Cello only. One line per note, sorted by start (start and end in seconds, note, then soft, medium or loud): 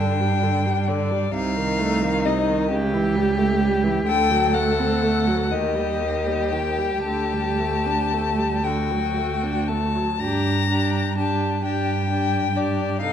0.00 1.31 G2 soft
1.35 2.74 C2 medium
2.72 4.08 C#2 medium
4.09 5.54 D2 medium
5.52 7.06 D#2 soft
7.06 9.95 D2 soft
10.20 11.48 G2 soft
11.65 12.86 G2 soft
13.03 13.13 C3 medium